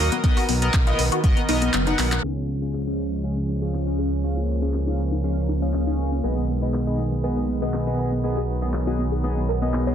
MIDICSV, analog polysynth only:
0, 0, Header, 1, 2, 480
1, 0, Start_track
1, 0, Tempo, 500000
1, 228, Time_signature, 4, 2, 24, 8
1, 9551, End_track
2, 0, Start_track
2, 0, Title_t, "Analog polysynth"
2, 0, Program_c, 0, 90
2, 0, Note_on_c, 0, 58, 101
2, 0, Note_on_c, 0, 66, 89
2, 0, Note_on_c, 0, 75, 110
2, 96, Note_off_c, 0, 75, 0
2, 97, Note_off_c, 0, 58, 0
2, 97, Note_off_c, 0, 66, 0
2, 228, Note_on_c, 0, 59, 100
2, 228, Note_on_c, 0, 70, 88
2, 228, Note_on_c, 0, 75, 107
2, 373, Note_off_c, 0, 59, 0
2, 373, Note_off_c, 0, 70, 0
2, 373, Note_off_c, 0, 75, 0
2, 596, Note_on_c, 0, 59, 74
2, 596, Note_on_c, 0, 70, 73
2, 596, Note_on_c, 0, 75, 86
2, 729, Note_off_c, 0, 59, 0
2, 729, Note_off_c, 0, 70, 0
2, 729, Note_off_c, 0, 75, 0
2, 837, Note_on_c, 0, 59, 85
2, 837, Note_on_c, 0, 70, 78
2, 837, Note_on_c, 0, 75, 91
2, 969, Note_off_c, 0, 59, 0
2, 969, Note_off_c, 0, 70, 0
2, 969, Note_off_c, 0, 75, 0
2, 1190, Note_on_c, 0, 59, 99
2, 1190, Note_on_c, 0, 70, 90
2, 1190, Note_on_c, 0, 75, 111
2, 1334, Note_off_c, 0, 59, 0
2, 1334, Note_off_c, 0, 70, 0
2, 1334, Note_off_c, 0, 75, 0
2, 1429, Note_on_c, 0, 70, 86
2, 1429, Note_on_c, 0, 75, 104
2, 1430, Note_on_c, 0, 59, 92
2, 1652, Note_off_c, 0, 59, 0
2, 1652, Note_off_c, 0, 70, 0
2, 1652, Note_off_c, 0, 75, 0
2, 1795, Note_on_c, 0, 59, 83
2, 1796, Note_on_c, 0, 70, 76
2, 1796, Note_on_c, 0, 78, 89
2, 2121, Note_off_c, 0, 59, 0
2, 2121, Note_off_c, 0, 70, 0
2, 2121, Note_off_c, 0, 78, 0
2, 2148, Note_on_c, 0, 61, 97
2, 2148, Note_on_c, 0, 68, 87
2, 2293, Note_off_c, 0, 61, 0
2, 2293, Note_off_c, 0, 68, 0
2, 2515, Note_on_c, 0, 61, 73
2, 2515, Note_on_c, 0, 77, 80
2, 2516, Note_on_c, 0, 68, 66
2, 2648, Note_off_c, 0, 61, 0
2, 2649, Note_off_c, 0, 68, 0
2, 2649, Note_off_c, 0, 77, 0
2, 2756, Note_on_c, 0, 61, 79
2, 2756, Note_on_c, 0, 68, 73
2, 2756, Note_on_c, 0, 77, 86
2, 2889, Note_off_c, 0, 61, 0
2, 2889, Note_off_c, 0, 68, 0
2, 2889, Note_off_c, 0, 77, 0
2, 3108, Note_on_c, 0, 61, 94
2, 3109, Note_on_c, 0, 68, 88
2, 3109, Note_on_c, 0, 77, 103
2, 3253, Note_off_c, 0, 61, 0
2, 3253, Note_off_c, 0, 68, 0
2, 3253, Note_off_c, 0, 77, 0
2, 3476, Note_on_c, 0, 61, 85
2, 3476, Note_on_c, 0, 68, 74
2, 3476, Note_on_c, 0, 77, 92
2, 3685, Note_off_c, 0, 61, 0
2, 3685, Note_off_c, 0, 68, 0
2, 3685, Note_off_c, 0, 77, 0
2, 3716, Note_on_c, 0, 61, 93
2, 3716, Note_on_c, 0, 68, 85
2, 3716, Note_on_c, 0, 77, 105
2, 3937, Note_off_c, 0, 61, 0
2, 3937, Note_off_c, 0, 68, 0
2, 3937, Note_off_c, 0, 77, 0
2, 4068, Note_on_c, 0, 61, 94
2, 4068, Note_on_c, 0, 68, 86
2, 4068, Note_on_c, 0, 77, 100
2, 4213, Note_off_c, 0, 61, 0
2, 4213, Note_off_c, 0, 68, 0
2, 4213, Note_off_c, 0, 77, 0
2, 4435, Note_on_c, 0, 61, 74
2, 4435, Note_on_c, 0, 68, 67
2, 4435, Note_on_c, 0, 77, 84
2, 4568, Note_off_c, 0, 68, 0
2, 4569, Note_off_c, 0, 61, 0
2, 4569, Note_off_c, 0, 77, 0
2, 4676, Note_on_c, 0, 61, 78
2, 4676, Note_on_c, 0, 68, 72
2, 4676, Note_on_c, 0, 77, 89
2, 4809, Note_off_c, 0, 61, 0
2, 4809, Note_off_c, 0, 68, 0
2, 4809, Note_off_c, 0, 77, 0
2, 5030, Note_on_c, 0, 61, 93
2, 5030, Note_on_c, 0, 68, 85
2, 5030, Note_on_c, 0, 77, 103
2, 5174, Note_off_c, 0, 61, 0
2, 5174, Note_off_c, 0, 68, 0
2, 5174, Note_off_c, 0, 77, 0
2, 5396, Note_on_c, 0, 61, 83
2, 5396, Note_on_c, 0, 68, 76
2, 5396, Note_on_c, 0, 77, 91
2, 5605, Note_off_c, 0, 61, 0
2, 5605, Note_off_c, 0, 68, 0
2, 5605, Note_off_c, 0, 77, 0
2, 5635, Note_on_c, 0, 61, 96
2, 5635, Note_on_c, 0, 68, 86
2, 5635, Note_on_c, 0, 77, 103
2, 5856, Note_off_c, 0, 68, 0
2, 5857, Note_off_c, 0, 61, 0
2, 5857, Note_off_c, 0, 77, 0
2, 5989, Note_on_c, 0, 68, 89
2, 5989, Note_on_c, 0, 75, 105
2, 5990, Note_on_c, 0, 59, 92
2, 6134, Note_off_c, 0, 59, 0
2, 6134, Note_off_c, 0, 68, 0
2, 6134, Note_off_c, 0, 75, 0
2, 6356, Note_on_c, 0, 59, 75
2, 6356, Note_on_c, 0, 68, 69
2, 6356, Note_on_c, 0, 75, 80
2, 6489, Note_off_c, 0, 59, 0
2, 6489, Note_off_c, 0, 68, 0
2, 6489, Note_off_c, 0, 75, 0
2, 6595, Note_on_c, 0, 59, 79
2, 6595, Note_on_c, 0, 68, 71
2, 6595, Note_on_c, 0, 75, 86
2, 6728, Note_off_c, 0, 68, 0
2, 6728, Note_off_c, 0, 75, 0
2, 6729, Note_off_c, 0, 59, 0
2, 6948, Note_on_c, 0, 68, 89
2, 6948, Note_on_c, 0, 75, 102
2, 6949, Note_on_c, 0, 59, 94
2, 7093, Note_off_c, 0, 59, 0
2, 7093, Note_off_c, 0, 68, 0
2, 7093, Note_off_c, 0, 75, 0
2, 7315, Note_on_c, 0, 59, 85
2, 7315, Note_on_c, 0, 68, 77
2, 7315, Note_on_c, 0, 75, 91
2, 7524, Note_off_c, 0, 59, 0
2, 7524, Note_off_c, 0, 75, 0
2, 7525, Note_off_c, 0, 68, 0
2, 7555, Note_on_c, 0, 59, 98
2, 7555, Note_on_c, 0, 68, 86
2, 7555, Note_on_c, 0, 75, 105
2, 7776, Note_off_c, 0, 59, 0
2, 7776, Note_off_c, 0, 68, 0
2, 7777, Note_off_c, 0, 75, 0
2, 7908, Note_on_c, 0, 59, 93
2, 7908, Note_on_c, 0, 68, 87
2, 7908, Note_on_c, 0, 75, 104
2, 8053, Note_off_c, 0, 59, 0
2, 8053, Note_off_c, 0, 68, 0
2, 8053, Note_off_c, 0, 75, 0
2, 8274, Note_on_c, 0, 59, 74
2, 8274, Note_on_c, 0, 68, 69
2, 8275, Note_on_c, 0, 75, 82
2, 8408, Note_off_c, 0, 59, 0
2, 8408, Note_off_c, 0, 68, 0
2, 8408, Note_off_c, 0, 75, 0
2, 8515, Note_on_c, 0, 59, 81
2, 8515, Note_on_c, 0, 68, 75
2, 8515, Note_on_c, 0, 75, 89
2, 8648, Note_off_c, 0, 59, 0
2, 8648, Note_off_c, 0, 68, 0
2, 8648, Note_off_c, 0, 75, 0
2, 8868, Note_on_c, 0, 59, 94
2, 8868, Note_on_c, 0, 68, 87
2, 8868, Note_on_c, 0, 75, 104
2, 9013, Note_off_c, 0, 59, 0
2, 9013, Note_off_c, 0, 68, 0
2, 9013, Note_off_c, 0, 75, 0
2, 9234, Note_on_c, 0, 59, 84
2, 9234, Note_on_c, 0, 68, 74
2, 9234, Note_on_c, 0, 75, 90
2, 9444, Note_off_c, 0, 59, 0
2, 9444, Note_off_c, 0, 68, 0
2, 9444, Note_off_c, 0, 75, 0
2, 9475, Note_on_c, 0, 59, 97
2, 9475, Note_on_c, 0, 68, 85
2, 9475, Note_on_c, 0, 75, 107
2, 9551, Note_off_c, 0, 59, 0
2, 9551, Note_off_c, 0, 68, 0
2, 9551, Note_off_c, 0, 75, 0
2, 9551, End_track
0, 0, End_of_file